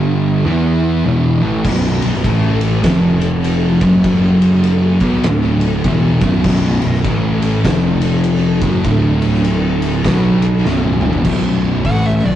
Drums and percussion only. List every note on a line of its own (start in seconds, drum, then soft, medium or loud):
1.64 kick loud
1.64 crash loud
2.02 ride medium
2.14 snare soft
2.24 kick loud
2.24 ride loud
2.61 ride medium
2.84 kick loud
2.84 snare loud
2.84 ride loud
3.22 ride medium
3.44 ride loud
3.81 kick loud
3.81 ride medium
4.04 kick loud
4.04 ride loud
4.42 ride medium
4.64 ride medium
5.00 kick loud
5.00 ride medium
5.23 snare loud
5.23 ride loud
5.61 ride medium
5.84 kick loud
5.84 ride loud
6.21 kick loud
6.21 ride medium
6.44 kick loud
6.44 crash loud
6.82 ride medium
6.94 snare soft
7.04 kick loud
7.04 ride loud
7.42 ride medium
7.64 kick loud
7.64 snare loud
7.64 ride loud
8.01 ride medium
8.24 ride loud
8.61 kick loud
8.61 ride medium
8.84 kick loud
8.84 ride loud
9.22 ride medium
9.34 snare soft
9.45 ride loud
9.82 ride medium
10.05 kick loud
10.05 snare loud
10.05 ride medium
10.42 ride medium
10.65 snare medium
10.83 high tom medium
11.01 mid tom loud
11.13 floor tom medium
11.24 kick loud
11.24 crash loud
11.85 kick loud
11.85 open hi-hat medium